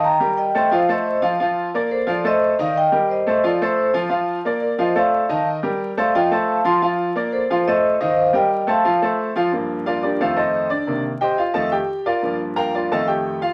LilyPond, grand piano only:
<<
  \new Staff \with { instrumentName = "Grand piano" } { \time 4/4 \key f \mixolydian \tempo 4 = 177 <ees ees' ees''>8 <g g' bes'>4 <a a' c''>8 <f f' f''>8 <a a' c''>4 <f f' f''>8 | <f f' f''>4 <bes bes' d''>4 <f f' f''>8 <a a' c''>4 <ees ees' ees''>8~ | <ees ees' ees''>8 <g g' bes'>4 <a a' c''>8 <f f' f''>8 <a a' c''>4 <f f' f''>8 | <f f' f''>4 <bes bes' d''>4 <f f' f''>8 <a a' c''>4 <ees ees' ees''>8~ |
<ees ees' ees''>8 <g g' bes'>4 <a a' c''>8 <f f' f''>8 <a a' c''>4 <f f' f''>8 | <f f' f''>4 <bes bes' d''>4 <f f' f''>8 <a a' c''>4 <ees ees' ees''>8~ | <ees ees' ees''>8 <g g' bes'>4 <a a' c''>8 <f f' f''>8 <a a' c''>4 <f f' f''>8 | r4 <f' bes' d'' f''>8 <d' g' bes' d''>8 <f' a' c'' f''>8 <ees' a' c'' ees''>4 <d' d''>8~ |
<d' d''>8 r8 <g' c'' ees'' g''>8 <f' f''>8 <a' ees'' f'' a''>8 <g' g''>4 <f' bes' d'' f''>8~ | <f' bes' d'' f''>8 r8 <bes' f'' g'' bes''>8 <f' bes' d'' f''>8 <a' ees'' f'' a''>8 <g' g''>4 <f' f''>8 | }
  \new Staff \with { instrumentName = "Grand piano" } { \clef bass \time 4/4 \key f \mixolydian r1 | r1 | r1 | r1 |
r1 | r1 | r1 | <g, f bes>2 <f, ees a>4. r8 |
<c ees bes>8 r4. <f, ees a>8 r4. | <g, f bes>2 <f, ees a>4. r8 | }
>>